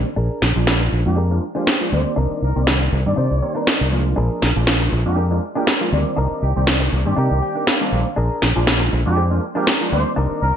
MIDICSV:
0, 0, Header, 1, 8, 480
1, 0, Start_track
1, 0, Tempo, 500000
1, 166, Time_signature, 4, 2, 24, 8
1, 10144, End_track
2, 0, Start_track
2, 0, Title_t, "Clean electric guitar"
2, 0, Program_c, 0, 27
2, 157, Note_on_c, 0, 62, 112
2, 164, Note_on_c, 0, 68, 97
2, 173, Note_on_c, 0, 70, 122
2, 467, Note_off_c, 0, 62, 0
2, 471, Note_off_c, 0, 68, 0
2, 476, Note_off_c, 0, 70, 0
2, 1114, Note_on_c, 0, 62, 86
2, 1123, Note_on_c, 0, 68, 78
2, 1131, Note_on_c, 0, 70, 93
2, 1306, Note_off_c, 0, 62, 0
2, 1310, Note_off_c, 0, 68, 0
2, 1314, Note_off_c, 0, 70, 0
2, 1487, Note_on_c, 0, 62, 90
2, 1494, Note_on_c, 0, 68, 76
2, 1503, Note_on_c, 0, 72, 95
2, 1787, Note_off_c, 0, 62, 0
2, 1790, Note_off_c, 0, 68, 0
2, 1795, Note_off_c, 0, 72, 0
2, 2075, Note_on_c, 0, 62, 110
2, 2084, Note_on_c, 0, 63, 103
2, 2091, Note_on_c, 0, 70, 123
2, 2386, Note_off_c, 0, 62, 0
2, 2391, Note_off_c, 0, 63, 0
2, 2395, Note_off_c, 0, 70, 0
2, 3035, Note_on_c, 0, 62, 84
2, 3043, Note_on_c, 0, 63, 78
2, 3052, Note_on_c, 0, 72, 97
2, 3227, Note_off_c, 0, 62, 0
2, 3231, Note_off_c, 0, 63, 0
2, 3235, Note_off_c, 0, 72, 0
2, 3406, Note_on_c, 0, 62, 87
2, 3415, Note_on_c, 0, 63, 77
2, 3422, Note_on_c, 0, 70, 101
2, 3706, Note_off_c, 0, 62, 0
2, 3710, Note_off_c, 0, 63, 0
2, 3714, Note_off_c, 0, 70, 0
2, 3996, Note_on_c, 0, 62, 106
2, 4004, Note_on_c, 0, 68, 104
2, 4012, Note_on_c, 0, 70, 119
2, 4307, Note_off_c, 0, 62, 0
2, 4311, Note_off_c, 0, 68, 0
2, 4315, Note_off_c, 0, 70, 0
2, 4957, Note_on_c, 0, 62, 85
2, 4966, Note_on_c, 0, 68, 79
2, 4974, Note_on_c, 0, 70, 91
2, 5147, Note_off_c, 0, 62, 0
2, 5152, Note_off_c, 0, 68, 0
2, 5156, Note_off_c, 0, 70, 0
2, 5332, Note_on_c, 0, 62, 88
2, 5339, Note_on_c, 0, 68, 82
2, 5348, Note_on_c, 0, 70, 93
2, 5629, Note_off_c, 0, 62, 0
2, 5633, Note_off_c, 0, 68, 0
2, 5637, Note_off_c, 0, 70, 0
2, 5919, Note_on_c, 0, 62, 111
2, 5928, Note_on_c, 0, 63, 100
2, 5935, Note_on_c, 0, 70, 126
2, 6228, Note_off_c, 0, 62, 0
2, 6233, Note_off_c, 0, 63, 0
2, 6236, Note_off_c, 0, 70, 0
2, 6878, Note_on_c, 0, 62, 88
2, 6886, Note_on_c, 0, 63, 76
2, 6894, Note_on_c, 0, 70, 95
2, 7068, Note_off_c, 0, 62, 0
2, 7072, Note_off_c, 0, 63, 0
2, 7076, Note_off_c, 0, 70, 0
2, 7126, Note_on_c, 0, 79, 72
2, 7250, Note_on_c, 0, 62, 87
2, 7257, Note_on_c, 0, 63, 82
2, 7265, Note_on_c, 0, 70, 93
2, 7350, Note_off_c, 0, 79, 0
2, 7366, Note_on_c, 0, 77, 75
2, 7548, Note_off_c, 0, 62, 0
2, 7552, Note_off_c, 0, 63, 0
2, 7556, Note_off_c, 0, 70, 0
2, 7813, Note_off_c, 0, 77, 0
2, 7837, Note_on_c, 0, 62, 112
2, 7844, Note_on_c, 0, 68, 98
2, 7853, Note_on_c, 0, 70, 120
2, 8147, Note_off_c, 0, 62, 0
2, 8151, Note_off_c, 0, 68, 0
2, 8156, Note_off_c, 0, 70, 0
2, 8798, Note_on_c, 0, 62, 86
2, 8805, Note_on_c, 0, 68, 83
2, 8815, Note_on_c, 0, 72, 93
2, 8988, Note_off_c, 0, 62, 0
2, 8992, Note_off_c, 0, 68, 0
2, 8996, Note_off_c, 0, 72, 0
2, 9169, Note_on_c, 0, 62, 89
2, 9177, Note_on_c, 0, 68, 83
2, 9185, Note_on_c, 0, 70, 96
2, 9468, Note_off_c, 0, 62, 0
2, 9472, Note_off_c, 0, 68, 0
2, 9476, Note_off_c, 0, 70, 0
2, 9757, Note_on_c, 0, 62, 111
2, 9765, Note_on_c, 0, 63, 99
2, 9774, Note_on_c, 0, 70, 122
2, 10067, Note_off_c, 0, 62, 0
2, 10072, Note_off_c, 0, 63, 0
2, 10076, Note_off_c, 0, 70, 0
2, 10144, End_track
3, 0, Start_track
3, 0, Title_t, "Horn section"
3, 0, Program_c, 1, 61
3, 1017, Note_on_c, 1, 67, 93
3, 1180, Note_off_c, 1, 67, 0
3, 1499, Note_on_c, 1, 67, 82
3, 1661, Note_off_c, 1, 67, 0
3, 1848, Note_on_c, 1, 72, 84
3, 2024, Note_off_c, 1, 72, 0
3, 2326, Note_on_c, 1, 70, 89
3, 2502, Note_off_c, 1, 70, 0
3, 2941, Note_on_c, 1, 74, 95
3, 3607, Note_off_c, 1, 74, 0
3, 4860, Note_on_c, 1, 67, 92
3, 5022, Note_off_c, 1, 67, 0
3, 5340, Note_on_c, 1, 67, 86
3, 5502, Note_off_c, 1, 67, 0
3, 6169, Note_on_c, 1, 67, 86
3, 6252, Note_off_c, 1, 67, 0
3, 6302, Note_on_c, 1, 67, 77
3, 6369, Note_off_c, 1, 67, 0
3, 6780, Note_on_c, 1, 67, 96
3, 7447, Note_off_c, 1, 67, 0
3, 8699, Note_on_c, 1, 67, 89
3, 8861, Note_off_c, 1, 67, 0
3, 9180, Note_on_c, 1, 67, 85
3, 9341, Note_off_c, 1, 67, 0
3, 9526, Note_on_c, 1, 72, 87
3, 9703, Note_off_c, 1, 72, 0
3, 10004, Note_on_c, 1, 70, 93
3, 10144, Note_off_c, 1, 70, 0
3, 10144, End_track
4, 0, Start_track
4, 0, Title_t, "Analog polysynth"
4, 0, Program_c, 2, 90
4, 533, Note_on_c, 2, 53, 84
4, 535, Note_on_c, 2, 56, 76
4, 536, Note_on_c, 2, 58, 76
4, 539, Note_on_c, 2, 62, 82
4, 540, Note_on_c, 2, 65, 93
4, 984, Note_off_c, 2, 53, 0
4, 985, Note_off_c, 2, 56, 0
4, 986, Note_off_c, 2, 58, 0
4, 987, Note_off_c, 2, 62, 0
4, 987, Note_off_c, 2, 65, 0
4, 1014, Note_on_c, 2, 53, 98
4, 1016, Note_on_c, 2, 56, 89
4, 1018, Note_on_c, 2, 58, 87
4, 1020, Note_on_c, 2, 62, 86
4, 1022, Note_on_c, 2, 65, 109
4, 1143, Note_off_c, 2, 53, 0
4, 1144, Note_off_c, 2, 56, 0
4, 1145, Note_off_c, 2, 58, 0
4, 1146, Note_off_c, 2, 62, 0
4, 1147, Note_off_c, 2, 65, 0
4, 1254, Note_on_c, 2, 53, 81
4, 1256, Note_on_c, 2, 56, 72
4, 1258, Note_on_c, 2, 58, 75
4, 1260, Note_on_c, 2, 62, 72
4, 1262, Note_on_c, 2, 65, 86
4, 1383, Note_off_c, 2, 53, 0
4, 1384, Note_off_c, 2, 56, 0
4, 1385, Note_off_c, 2, 58, 0
4, 1386, Note_off_c, 2, 62, 0
4, 1387, Note_off_c, 2, 65, 0
4, 1495, Note_on_c, 2, 53, 92
4, 1497, Note_on_c, 2, 56, 84
4, 1500, Note_on_c, 2, 58, 84
4, 1501, Note_on_c, 2, 62, 86
4, 1502, Note_on_c, 2, 65, 99
4, 1624, Note_off_c, 2, 53, 0
4, 1625, Note_off_c, 2, 56, 0
4, 1626, Note_off_c, 2, 58, 0
4, 1626, Note_off_c, 2, 62, 0
4, 1627, Note_off_c, 2, 65, 0
4, 1736, Note_on_c, 2, 53, 71
4, 1737, Note_on_c, 2, 56, 66
4, 1738, Note_on_c, 2, 58, 65
4, 1740, Note_on_c, 2, 62, 65
4, 1743, Note_on_c, 2, 65, 78
4, 1829, Note_off_c, 2, 53, 0
4, 1830, Note_off_c, 2, 56, 0
4, 1830, Note_off_c, 2, 58, 0
4, 1831, Note_off_c, 2, 62, 0
4, 1833, Note_off_c, 2, 65, 0
4, 1838, Note_on_c, 2, 51, 89
4, 1840, Note_on_c, 2, 55, 85
4, 1845, Note_on_c, 2, 58, 88
4, 1848, Note_on_c, 2, 60, 86
4, 1852, Note_on_c, 2, 74, 106
4, 2422, Note_off_c, 2, 51, 0
4, 2423, Note_off_c, 2, 55, 0
4, 2426, Note_off_c, 2, 58, 0
4, 2427, Note_off_c, 2, 60, 0
4, 2429, Note_off_c, 2, 74, 0
4, 2455, Note_on_c, 2, 51, 84
4, 2457, Note_on_c, 2, 55, 79
4, 2459, Note_on_c, 2, 58, 77
4, 2460, Note_on_c, 2, 60, 82
4, 2462, Note_on_c, 2, 74, 94
4, 2905, Note_off_c, 2, 51, 0
4, 2906, Note_off_c, 2, 55, 0
4, 2907, Note_off_c, 2, 58, 0
4, 2907, Note_off_c, 2, 60, 0
4, 2909, Note_off_c, 2, 74, 0
4, 2935, Note_on_c, 2, 51, 93
4, 2938, Note_on_c, 2, 55, 77
4, 2939, Note_on_c, 2, 58, 82
4, 2941, Note_on_c, 2, 60, 82
4, 2943, Note_on_c, 2, 74, 100
4, 3264, Note_off_c, 2, 51, 0
4, 3265, Note_off_c, 2, 55, 0
4, 3265, Note_off_c, 2, 58, 0
4, 3266, Note_off_c, 2, 60, 0
4, 3267, Note_off_c, 2, 74, 0
4, 3283, Note_on_c, 2, 51, 75
4, 3285, Note_on_c, 2, 55, 70
4, 3288, Note_on_c, 2, 58, 69
4, 3289, Note_on_c, 2, 60, 69
4, 3290, Note_on_c, 2, 74, 83
4, 3739, Note_off_c, 2, 51, 0
4, 3740, Note_off_c, 2, 55, 0
4, 3741, Note_off_c, 2, 58, 0
4, 3742, Note_off_c, 2, 60, 0
4, 3742, Note_off_c, 2, 74, 0
4, 3761, Note_on_c, 2, 53, 76
4, 3764, Note_on_c, 2, 56, 74
4, 3768, Note_on_c, 2, 58, 76
4, 3772, Note_on_c, 2, 62, 71
4, 3775, Note_on_c, 2, 65, 88
4, 4344, Note_off_c, 2, 53, 0
4, 4345, Note_off_c, 2, 56, 0
4, 4347, Note_off_c, 2, 58, 0
4, 4349, Note_off_c, 2, 62, 0
4, 4351, Note_off_c, 2, 65, 0
4, 4373, Note_on_c, 2, 53, 84
4, 4376, Note_on_c, 2, 56, 79
4, 4377, Note_on_c, 2, 58, 74
4, 4379, Note_on_c, 2, 62, 82
4, 4380, Note_on_c, 2, 65, 96
4, 4824, Note_off_c, 2, 53, 0
4, 4825, Note_off_c, 2, 56, 0
4, 4826, Note_off_c, 2, 58, 0
4, 4827, Note_off_c, 2, 62, 0
4, 4828, Note_off_c, 2, 65, 0
4, 4851, Note_on_c, 2, 53, 95
4, 4853, Note_on_c, 2, 56, 86
4, 4855, Note_on_c, 2, 58, 88
4, 4857, Note_on_c, 2, 62, 88
4, 4859, Note_on_c, 2, 65, 108
4, 4981, Note_off_c, 2, 53, 0
4, 4983, Note_off_c, 2, 56, 0
4, 4984, Note_off_c, 2, 58, 0
4, 4985, Note_off_c, 2, 62, 0
4, 4986, Note_off_c, 2, 65, 0
4, 5093, Note_on_c, 2, 53, 83
4, 5096, Note_on_c, 2, 56, 72
4, 5098, Note_on_c, 2, 58, 73
4, 5100, Note_on_c, 2, 62, 72
4, 5102, Note_on_c, 2, 65, 87
4, 5223, Note_off_c, 2, 53, 0
4, 5224, Note_off_c, 2, 56, 0
4, 5225, Note_off_c, 2, 58, 0
4, 5226, Note_off_c, 2, 62, 0
4, 5227, Note_off_c, 2, 65, 0
4, 5334, Note_on_c, 2, 53, 88
4, 5335, Note_on_c, 2, 56, 83
4, 5337, Note_on_c, 2, 58, 83
4, 5340, Note_on_c, 2, 62, 85
4, 5341, Note_on_c, 2, 65, 102
4, 5463, Note_off_c, 2, 53, 0
4, 5464, Note_off_c, 2, 56, 0
4, 5465, Note_off_c, 2, 58, 0
4, 5466, Note_off_c, 2, 62, 0
4, 5467, Note_off_c, 2, 65, 0
4, 5573, Note_on_c, 2, 53, 71
4, 5576, Note_on_c, 2, 56, 62
4, 5577, Note_on_c, 2, 58, 66
4, 5580, Note_on_c, 2, 62, 67
4, 5581, Note_on_c, 2, 65, 81
4, 5668, Note_off_c, 2, 53, 0
4, 5669, Note_off_c, 2, 56, 0
4, 5670, Note_off_c, 2, 58, 0
4, 5671, Note_off_c, 2, 62, 0
4, 5672, Note_off_c, 2, 65, 0
4, 5681, Note_on_c, 2, 51, 92
4, 5685, Note_on_c, 2, 55, 85
4, 5688, Note_on_c, 2, 58, 84
4, 5693, Note_on_c, 2, 60, 85
4, 5696, Note_on_c, 2, 74, 97
4, 6264, Note_off_c, 2, 51, 0
4, 6266, Note_off_c, 2, 55, 0
4, 6267, Note_off_c, 2, 58, 0
4, 6270, Note_off_c, 2, 60, 0
4, 6271, Note_off_c, 2, 74, 0
4, 6297, Note_on_c, 2, 51, 83
4, 6300, Note_on_c, 2, 55, 77
4, 6301, Note_on_c, 2, 58, 76
4, 6303, Note_on_c, 2, 60, 79
4, 6305, Note_on_c, 2, 74, 93
4, 6746, Note_off_c, 2, 51, 0
4, 6747, Note_off_c, 2, 55, 0
4, 6748, Note_off_c, 2, 58, 0
4, 6749, Note_off_c, 2, 60, 0
4, 6750, Note_off_c, 2, 74, 0
4, 6770, Note_on_c, 2, 51, 89
4, 6774, Note_on_c, 2, 55, 80
4, 6778, Note_on_c, 2, 58, 81
4, 6783, Note_on_c, 2, 60, 81
4, 6786, Note_on_c, 2, 74, 103
4, 7463, Note_off_c, 2, 51, 0
4, 7464, Note_off_c, 2, 55, 0
4, 7466, Note_off_c, 2, 58, 0
4, 7469, Note_off_c, 2, 60, 0
4, 7470, Note_off_c, 2, 74, 0
4, 7496, Note_on_c, 2, 51, 86
4, 7498, Note_on_c, 2, 55, 85
4, 7500, Note_on_c, 2, 58, 79
4, 7501, Note_on_c, 2, 60, 85
4, 7503, Note_on_c, 2, 62, 97
4, 7589, Note_off_c, 2, 51, 0
4, 7590, Note_off_c, 2, 55, 0
4, 7591, Note_off_c, 2, 58, 0
4, 7592, Note_off_c, 2, 60, 0
4, 7593, Note_off_c, 2, 62, 0
4, 7603, Note_on_c, 2, 51, 87
4, 7605, Note_on_c, 2, 55, 77
4, 7606, Note_on_c, 2, 58, 74
4, 7609, Note_on_c, 2, 60, 77
4, 7610, Note_on_c, 2, 62, 96
4, 7752, Note_off_c, 2, 51, 0
4, 7752, Note_off_c, 2, 55, 0
4, 7753, Note_off_c, 2, 58, 0
4, 7755, Note_off_c, 2, 60, 0
4, 7755, Note_off_c, 2, 62, 0
4, 8212, Note_on_c, 2, 53, 87
4, 8213, Note_on_c, 2, 56, 76
4, 8216, Note_on_c, 2, 58, 81
4, 8218, Note_on_c, 2, 62, 78
4, 8219, Note_on_c, 2, 65, 92
4, 8663, Note_off_c, 2, 53, 0
4, 8664, Note_off_c, 2, 56, 0
4, 8665, Note_off_c, 2, 58, 0
4, 8666, Note_off_c, 2, 62, 0
4, 8667, Note_off_c, 2, 65, 0
4, 8692, Note_on_c, 2, 53, 95
4, 8694, Note_on_c, 2, 56, 89
4, 8696, Note_on_c, 2, 58, 86
4, 8698, Note_on_c, 2, 62, 90
4, 8700, Note_on_c, 2, 65, 108
4, 8822, Note_off_c, 2, 53, 0
4, 8823, Note_off_c, 2, 56, 0
4, 8824, Note_off_c, 2, 58, 0
4, 8825, Note_off_c, 2, 62, 0
4, 8826, Note_off_c, 2, 65, 0
4, 8933, Note_on_c, 2, 53, 81
4, 8935, Note_on_c, 2, 56, 72
4, 8937, Note_on_c, 2, 58, 71
4, 8939, Note_on_c, 2, 62, 76
4, 8941, Note_on_c, 2, 65, 93
4, 9063, Note_off_c, 2, 53, 0
4, 9064, Note_off_c, 2, 56, 0
4, 9065, Note_off_c, 2, 58, 0
4, 9065, Note_off_c, 2, 62, 0
4, 9066, Note_off_c, 2, 65, 0
4, 9175, Note_on_c, 2, 53, 96
4, 9176, Note_on_c, 2, 56, 86
4, 9178, Note_on_c, 2, 58, 81
4, 9181, Note_on_c, 2, 62, 84
4, 9182, Note_on_c, 2, 65, 103
4, 9304, Note_off_c, 2, 53, 0
4, 9304, Note_off_c, 2, 56, 0
4, 9305, Note_off_c, 2, 58, 0
4, 9306, Note_off_c, 2, 62, 0
4, 9307, Note_off_c, 2, 65, 0
4, 9413, Note_on_c, 2, 53, 70
4, 9416, Note_on_c, 2, 56, 65
4, 9417, Note_on_c, 2, 58, 65
4, 9420, Note_on_c, 2, 62, 64
4, 9422, Note_on_c, 2, 65, 81
4, 9508, Note_off_c, 2, 53, 0
4, 9509, Note_off_c, 2, 56, 0
4, 9510, Note_off_c, 2, 58, 0
4, 9511, Note_off_c, 2, 62, 0
4, 9512, Note_off_c, 2, 65, 0
4, 9519, Note_on_c, 2, 51, 95
4, 9523, Note_on_c, 2, 55, 85
4, 9526, Note_on_c, 2, 58, 83
4, 9531, Note_on_c, 2, 60, 81
4, 9534, Note_on_c, 2, 74, 99
4, 10103, Note_off_c, 2, 51, 0
4, 10105, Note_off_c, 2, 55, 0
4, 10106, Note_off_c, 2, 58, 0
4, 10109, Note_off_c, 2, 60, 0
4, 10110, Note_off_c, 2, 74, 0
4, 10144, End_track
5, 0, Start_track
5, 0, Title_t, "Fingered electric bass"
5, 0, Program_c, 3, 33
5, 163, Note_on_c, 3, 34, 92
5, 266, Note_off_c, 3, 34, 0
5, 405, Note_on_c, 3, 34, 84
5, 508, Note_off_c, 3, 34, 0
5, 537, Note_on_c, 3, 34, 86
5, 847, Note_off_c, 3, 34, 0
5, 886, Note_on_c, 3, 34, 95
5, 988, Note_off_c, 3, 34, 0
5, 1018, Note_on_c, 3, 41, 84
5, 1327, Note_off_c, 3, 41, 0
5, 1846, Note_on_c, 3, 38, 85
5, 1948, Note_off_c, 3, 38, 0
5, 2086, Note_on_c, 3, 36, 92
5, 2188, Note_off_c, 3, 36, 0
5, 2326, Note_on_c, 3, 36, 85
5, 2428, Note_off_c, 3, 36, 0
5, 2458, Note_on_c, 3, 36, 80
5, 2767, Note_off_c, 3, 36, 0
5, 2807, Note_on_c, 3, 36, 99
5, 2909, Note_off_c, 3, 36, 0
5, 2939, Note_on_c, 3, 43, 84
5, 3023, Note_off_c, 3, 43, 0
5, 3048, Note_on_c, 3, 48, 88
5, 3149, Note_off_c, 3, 48, 0
5, 3178, Note_on_c, 3, 36, 92
5, 3262, Note_off_c, 3, 36, 0
5, 3658, Note_on_c, 3, 36, 86
5, 3967, Note_off_c, 3, 36, 0
5, 4008, Note_on_c, 3, 34, 92
5, 4109, Note_off_c, 3, 34, 0
5, 4248, Note_on_c, 3, 34, 86
5, 4349, Note_off_c, 3, 34, 0
5, 4376, Note_on_c, 3, 34, 84
5, 4686, Note_off_c, 3, 34, 0
5, 4726, Note_on_c, 3, 34, 94
5, 4828, Note_off_c, 3, 34, 0
5, 4857, Note_on_c, 3, 41, 79
5, 5167, Note_off_c, 3, 41, 0
5, 5687, Note_on_c, 3, 38, 86
5, 5789, Note_off_c, 3, 38, 0
5, 5928, Note_on_c, 3, 36, 94
5, 6029, Note_off_c, 3, 36, 0
5, 6168, Note_on_c, 3, 36, 84
5, 6269, Note_off_c, 3, 36, 0
5, 6300, Note_on_c, 3, 36, 81
5, 6608, Note_off_c, 3, 36, 0
5, 6647, Note_on_c, 3, 36, 90
5, 6749, Note_off_c, 3, 36, 0
5, 6779, Note_on_c, 3, 43, 85
5, 6862, Note_off_c, 3, 43, 0
5, 6887, Note_on_c, 3, 48, 87
5, 6988, Note_off_c, 3, 48, 0
5, 7018, Note_on_c, 3, 36, 94
5, 7102, Note_off_c, 3, 36, 0
5, 7605, Note_on_c, 3, 34, 82
5, 7708, Note_off_c, 3, 34, 0
5, 7847, Note_on_c, 3, 34, 92
5, 7948, Note_off_c, 3, 34, 0
5, 8089, Note_on_c, 3, 34, 85
5, 8190, Note_off_c, 3, 34, 0
5, 8222, Note_on_c, 3, 34, 83
5, 8529, Note_off_c, 3, 34, 0
5, 8570, Note_on_c, 3, 34, 92
5, 8670, Note_off_c, 3, 34, 0
5, 8700, Note_on_c, 3, 41, 82
5, 9008, Note_off_c, 3, 41, 0
5, 9526, Note_on_c, 3, 38, 83
5, 9628, Note_off_c, 3, 38, 0
5, 9767, Note_on_c, 3, 36, 93
5, 9868, Note_off_c, 3, 36, 0
5, 10006, Note_on_c, 3, 36, 85
5, 10108, Note_off_c, 3, 36, 0
5, 10144, End_track
6, 0, Start_track
6, 0, Title_t, "Muted clean electric guitar strokes"
6, 767, Note_on_c, 9, 29, 85
6, 863, Note_off_c, 9, 29, 0
6, 874, Note_on_c, 9, 29, 34
6, 970, Note_off_c, 9, 29, 0
6, 2686, Note_on_c, 9, 29, 84
6, 2782, Note_off_c, 9, 29, 0
6, 2795, Note_on_c, 9, 29, 33
6, 2891, Note_off_c, 9, 29, 0
6, 4607, Note_on_c, 9, 29, 81
6, 4703, Note_off_c, 9, 29, 0
6, 4717, Note_on_c, 9, 29, 33
6, 4813, Note_off_c, 9, 29, 0
6, 6530, Note_on_c, 9, 29, 86
6, 6626, Note_off_c, 9, 29, 0
6, 6635, Note_on_c, 9, 29, 33
6, 6731, Note_off_c, 9, 29, 0
6, 8448, Note_on_c, 9, 29, 87
6, 8544, Note_off_c, 9, 29, 0
6, 8557, Note_on_c, 9, 29, 33
6, 8653, Note_off_c, 9, 29, 0
6, 10144, End_track
7, 0, Start_track
7, 0, Title_t, "Muted fingered electric bass strokes"
7, 2217, Note_on_c, 9, 29, 39
7, 2313, Note_off_c, 9, 29, 0
7, 10144, End_track
8, 0, Start_track
8, 0, Title_t, "Drums"
8, 404, Note_on_c, 9, 38, 60
8, 500, Note_off_c, 9, 38, 0
8, 645, Note_on_c, 9, 38, 108
8, 741, Note_off_c, 9, 38, 0
8, 1605, Note_on_c, 9, 38, 110
8, 1701, Note_off_c, 9, 38, 0
8, 2564, Note_on_c, 9, 38, 110
8, 2660, Note_off_c, 9, 38, 0
8, 3525, Note_on_c, 9, 38, 113
8, 3621, Note_off_c, 9, 38, 0
8, 4246, Note_on_c, 9, 38, 62
8, 4342, Note_off_c, 9, 38, 0
8, 4484, Note_on_c, 9, 38, 114
8, 4580, Note_off_c, 9, 38, 0
8, 5445, Note_on_c, 9, 38, 114
8, 5541, Note_off_c, 9, 38, 0
8, 6404, Note_on_c, 9, 38, 121
8, 6500, Note_off_c, 9, 38, 0
8, 7365, Note_on_c, 9, 38, 115
8, 7461, Note_off_c, 9, 38, 0
8, 8084, Note_on_c, 9, 38, 62
8, 8180, Note_off_c, 9, 38, 0
8, 8325, Note_on_c, 9, 38, 119
8, 8421, Note_off_c, 9, 38, 0
8, 9284, Note_on_c, 9, 38, 114
8, 9380, Note_off_c, 9, 38, 0
8, 10144, End_track
0, 0, End_of_file